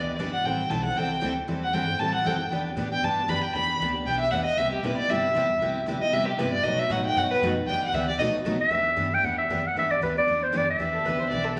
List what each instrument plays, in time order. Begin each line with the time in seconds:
Already playing: upright bass D2, steel-string acoustic guitar E3 B3 D4 G4 B4, violin D5
0.19 upright bass G1, steel-string acoustic guitar E3 B3 D4 G4 B4
0.32 violin F#5
0.44 upright bass A1, steel-string acoustic guitar E3 G3 C4 E4 A4, violin G5
0.70 upright bass B1, steel-string acoustic guitar E3 G3 C4 E4 A4, violin A5
0.85 steel-string acoustic guitar C4 E4 A4, violin F#5
0.96 upright bass C2, steel-string acoustic guitar E3 G3 C4 E4 A4, violin G5
1.21 upright bass D2, steel-string acoustic guitar E3 G3 C4 E4 A4
1.48 upright bass E2, steel-string acoustic guitar E3 G3 C4 E4 A4
1.64 violin F#5
1.73 upright bass G2, steel-string acoustic guitar E3 G3 C4 E4 A4, violin G5
1.87 steel-string acoustic guitar C4 E4 A4
1.99 upright bass A2, steel-string acoustic guitar E3 G3 C4 E4 A4, violin A5
2.15 violin F#5
2.25 upright bass F#2, steel-string acoustic guitar E3 G3 C4 E4 A4, violin G5
2.50 upright bass E2, steel-string acoustic guitar E3 B3 D4 G4 B4
2.76 upright bass A2, steel-string acoustic guitar E3 B3 D4 G4 B4
2.92 steel-string acoustic guitar B3 D4 G4, violin G5
3.02 upright bass G2, steel-string acoustic guitar E3 B3 D4 G4 B4, violin A5
3.28 upright bass F#2, steel-string acoustic guitar E3 B3 D4 G4 B4, violin B5
3.44 violin G5
3.53 upright bass E2, steel-string acoustic guitar E3 B3 D4 G4 B4, violin B5
3.80 upright bass D2, steel-string acoustic guitar E3 B3 D4 G4 B4
3.94 steel-string acoustic guitar B3 D4 G4
4.06 upright bass B1, steel-string acoustic guitar E3 B3 D4 G4 B4, violin G5
4.20 violin E5
4.31 upright bass E2, steel-string acoustic guitar E3 B3 D4 G4 B4, violin F#5
4.45 violin D#5
4.57 upright bass C2, steel-string acoustic guitar C3 G3 B3 E4 G4, violin E5
4.72 violin G4
4.83 upright bass B1, steel-string acoustic guitar C3 G3 B3 E4 G4, violin B4
4.97 steel-string acoustic guitar B3 E4 G4, violin D5, muted upright bass stroke
5.08 upright bass G1, steel-string acoustic guitar C3 G3 B3 E4 G4, violin E5
5.34 upright bass E2, steel-string acoustic guitar C3 G3 B3 E4 G4
5.59 upright bass C2, steel-string acoustic guitar C3 G3 B3 E4 G4
5.86 upright bass D2, steel-string acoustic guitar C3 G3 B3 E4 G4
6.00 steel-string acoustic guitar B3 E4 G4, violin D#5, muted upright bass stroke
6.12 upright bass E2, steel-string acoustic guitar C3 G3 B3 E4 G4, violin E5
6.26 violin G4, muted upright bass stroke
6.37 upright bass G2, steel-string acoustic guitar C3 G3 B3 E4 G4, violin B4
6.52 violin D5
6.63 upright bass B2, steel-string acoustic guitar B2 F#3 A3 D#4 F#4 B4, violin D#5
6.79 violin E5
6.89 upright bass A2, steel-string acoustic guitar B2 F#3 A3 D#4 F#4 B4, violin F#5
7.06 steel-string acoustic guitar A3 D#4 F#4, violin G5
7.15 upright bass G2, steel-string acoustic guitar B2 F#3 A3 D#4 F#4 B4, violin F#5
7.31 violin B4
7.41 upright bass F#2, steel-string acoustic guitar B2 F#3 A3 D#4 F#4 B4
7.66 upright bass E2, steel-string acoustic guitar E3 B3 D4 B4, violin G5
7.70 steel-string acoustic guitar G4
7.84 violin F#5
7.92 upright bass D2, steel-string acoustic guitar E3 B3 D4 G4 B4, violin E5
8.08 steel-string acoustic guitar B3 D4 G4, violin D5
8.18 upright bass B1, steel-string acoustic guitar B2 F#3 A3 D#4 F#4 B4, violin D#5
8.33 muted upright bass stroke
8.44 upright bass C2, steel-string acoustic guitar B2 F#3 A3 D#4 F#4 B4
8.61 clarinet E5
8.69 upright bass E2, steel-string acoustic guitar E3 B3 D4 G4 B4
8.96 upright bass G2, steel-string acoustic guitar E3 B3 D4 G4 B4
9.13 steel-string acoustic guitar B3 D4 G4, clarinet G5
9.23 upright bass E2, steel-string acoustic guitar E3 B3 D4 G4 B4, clarinet F#5
9.38 clarinet E5
9.48 upright bass F#2, steel-string acoustic guitar E3 B3 D4 G4 B4
9.67 clarinet F#5
9.74 upright bass G2, steel-string acoustic guitar E3 B3 D4 G4 B4
9.78 clarinet E5
9.91 clarinet D5
10.01 upright bass D2, steel-string acoustic guitar E3 B3 D4 G4 B4, clarinet B4
10.17 steel-string acoustic guitar B3 D4 G4, clarinet D5
10.27 upright bass E2, steel-string acoustic guitar E3 B3 D4 G4 B4
10.43 clarinet C5
10.52 upright bass F#2, steel-string acoustic guitar E3 B3 D4 G4 B4
10.57 clarinet D5
10.70 clarinet E5
10.78 upright bass E2, steel-string acoustic guitar E3 B3 D4 G4 B4
10.94 violin A4
11.04 upright bass D2, steel-string acoustic guitar E3 B3 D4 G4 B4, violin B4
11.19 steel-string acoustic guitar G4, violin C5
11.23 steel-string acoustic guitar B3 D4
11.30 upright bass B1, steel-string acoustic guitar E3 B3 D4 G4 B4, violin D5
11.44 violin A4
11.56 steel-string acoustic guitar E3, violin G4